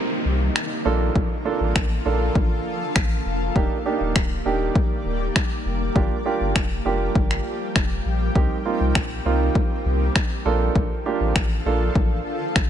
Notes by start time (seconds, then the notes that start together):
Already playing: C3 D#3 G3 A#3 C4 D#4 A#4, downlifter
0.25 C2
0.56 finger snap
0.85 A#1 D3 F3 A#3 D4 F4 A4
1.16 A#1, kick
1.45 A#3 D4 F4 A4
1.61 A1
1.76 A1, finger snap, kick
2.05 A#1 A#3 D4 F4 A4
2.35 A1, kick
2.96 A1, finger snap, kick
3.26 F1
3.56 D#1 D#3 G3 A#3 D4 D#4 G4 D5, kick
3.85 A#3 D4 D#4 G4
4.01 D#1
4.16 D1, finger snap, kick
4.45 D#1 A#3 D4 D#4 G4
4.75 kick
5.06 D#1
5.36 finger snap, kick
5.66 F1
5.95 G1 F3 G3 A#3 D4 F4 G4, kick
6.25 A#3 D4 F4 G4
6.41 G1
6.56 F1, finger snap, kick
6.85 F1 A#3 D4 F4 G4
7.15 G1, kick
7.31 finger snap
7.76 F1, finger snap, kick
8.06 A#1
8.35 C2 D#3 A#3 C4 D#4 G4, kick
8.65 A#3 C4 D#4 F4
8.80 C2
8.95 A#1, finger snap, kick
9.25 C2 A#3 C4 D#4 F4
9.55 kick
9.85 C2
10.16 finger snap, kick
10.45 A#1 D3 F3 A#3 D4 F4 A4
10.75 A#1, kick
11.06 A#3 D4 F4 G4
11.20 A1
11.36 A1, finger snap, kick
11.66 A#1 A#3 D4 F4 A4
11.95 A1, kick
12.56 A1, finger snap, kick